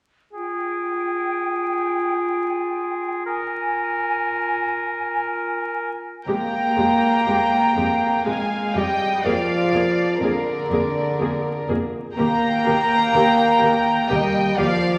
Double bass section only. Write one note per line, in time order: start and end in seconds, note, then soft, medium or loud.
6.27 6.35 F2 soft
6.76 6.84 F2 soft
7.26 7.34 F2 soft
7.75 7.83 F2 soft
8.25 8.33 F2 soft
8.74 8.82 F2 soft
9.23 9.31 F2 soft
9.71 9.79 F2 soft
10.20 10.28 F2 soft
10.69 10.77 F2 soft
11.18 11.26 F2 soft
11.68 11.76 F2 soft
12.18 12.26 D#2 medium
12.66 12.74 D#2 soft
13.13 13.21 D#2 medium
13.61 13.69 D#2 soft
14.10 14.18 D#2 medium
14.59 14.67 D#2 medium